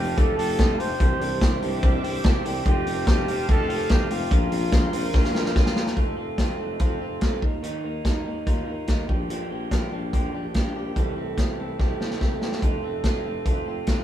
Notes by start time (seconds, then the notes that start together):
Already playing: F1 F3 C4 F4 G4 F5 A5
0.17 F1 F3 A3 C4 F4 G4 A4, kick, closed hi-hat
0.37 F1 C4 F4 G4 A4, open hi-hat
0.58 F1 A3 C4 F4 G4, kick, snare, closed hi-hat
0.79 F1 C4 F4 G4 C5, open hi-hat
0.99 C2 C3 E3 G3 C4 D4 G4 C5 E5 D6, kick, closed hi-hat
1.20 C2 G3 C4 D4 G4, open hi-hat
1.40 C2 G3 C4 D4 G4, kick, snare, closed hi-hat
1.62 C2 G3 C4 D4 G4, open hi-hat
1.83 C2 C3 E3 G3 C4 D4 G4, kick, closed hi-hat
2.04 C2 G3 C4 D4 G4, open hi-hat
2.24 C2 G3 C4 D4 G4, kick, snare, closed hi-hat
2.45 C2 G3 C4 D4 G4, open hi-hat
2.65 F1 F3 A3 C4 F4 G4 F5 A5, kick, closed hi-hat
2.86 F1 C4 F4 G4, open hi-hat
3.06 F1 A3 C4 F4 G4, kick, snare, closed hi-hat
3.27 F1 C4 F4 G4, open hi-hat
3.48 F1 F3 A3 C4 F4 G4 A4, kick, closed hi-hat
3.68 F1 C4 F4 G4, open hi-hat
3.80 G4
3.89 F1 A3 C4 F4 G4, kick, snare, closed hi-hat
4.10 F1 C4 F4 G4, open hi-hat
4.30 A#1 F3 A#3 C4 F4 A#4 C6, kick, closed hi-hat
4.51 A#1 C4 F4 A#4, open hi-hat
4.72 A#1 A#3 C4 F4 A#4, kick, snare, closed hi-hat
4.93 A#1 C4 F4 A#4, open hi-hat
5.13 A#1 A#3 C4 F4 A#4, kick, snare
5.24 snare
5.34 A#1 C4 F4 A#4, snare
5.45 snare
5.55 A#1 A#3 C4 F4 A#4, kick, snare
5.66 snare
5.76 C4 F4 A#4, snare
5.87 snare
5.96 F1 F3 A3 C4 F4 A4, kick, closed hi-hat
6.17 F1 A3 C4 F4 A4
6.38 F1 F3 C4 F4 A4, kick, snare, closed hi-hat
6.58 F1 A3 C4 F4 A4
6.79 F1 F3 C4 F4 A4, kick, closed hi-hat
7.00 F1 C4 F4 A4
7.20 F1 F3 A3 C4 F4 A4, kick, snare, closed hi-hat
7.42 D#2 D#3 A#3 D#4 A#4, kick
7.63 D#3 F3 A#3 D#4 A#4, closed hi-hat
7.84 D#2 A#3 D#4 A#4
8.04 D#2 F3 A#3 D#4 A#4, kick, snare, closed hi-hat
8.25 D#2 A#3 D#4 A#4
8.46 D#2 D#3 F3 A#3 D#4 F4 A#4, kick, closed hi-hat
8.67 D#2 A#3 D#4 A#4
8.87 D#2 F3 A#3 D#4 A#4, kick, snare, closed hi-hat
9.08 A#1 F3 A#3 D4 G4, kick
9.29 A#2 D3 F3 A#3 D4 G4, closed hi-hat
9.50 A#1 F3 A#3 D4 G4
9.71 A#1 F3 A#3 D4 G4, kick, snare, closed hi-hat
9.91 A#1 F3 A#3 D4 G4
10.13 A#1 A#2 D3 F3 A#3 D4 G4, kick, closed hi-hat
10.33 A#1 F3 A#3 D4 G4
10.53 A#1 F3 A#3 D4 G4, kick, snare, closed hi-hat
10.74 A#1 F3 A#3 D4 G4
10.96 C2 C3 E3 G3 C4 E4 A4, kick, closed hi-hat
11.16 C2 A3 C4 E4 A4
11.37 C2 G3 C4 E4 A4, kick, snare, closed hi-hat
11.58 C2 A3 C4 E4 A4
11.79 C2 C3 G3 C4 E4 G4 A4, kick, snare
12.00 C2 C4 E4 A4, snare
12.11 snare
12.20 C2 G3 A3 C4 E4 A4, kick, snare
12.41 C4 E4 G4 A4, snare
12.52 snare
12.62 F1 F3 A3 C4 F4 A4, kick, closed hi-hat
12.83 F1 A3 C4 F4 A4
13.03 F1 F3 C4 F4 A4, kick, snare, closed hi-hat
13.24 F1 A3 C4 F4 A4
13.45 F1 F3 C4 F4 A4, kick, closed hi-hat
13.66 F1 C4 F4 A4
13.87 F1 F3 A3 C4 F4 A4, kick, snare, closed hi-hat